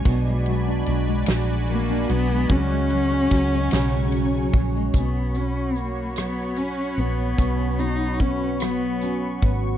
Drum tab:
RD |xxxxxx|xxxxxx|------|------|
HH |------|------|xxxxxx|xxxxxx|
SD |---o--|--oo--|---r--|---r--|
BD |o-----|o-o--o|o-----|o-o--o|